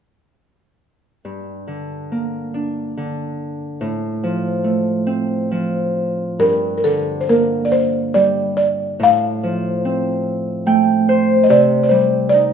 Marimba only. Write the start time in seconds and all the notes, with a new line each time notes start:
6.40 A#4
6.78 A#4
6.84 A4
7.21 C5
7.29 A#4
7.65 D5
7.72 C5
8.14 D5
8.57 D5
9.03 F5
11.44 D#5
11.50 D5
11.84 D5
11.89 C5
12.29 D5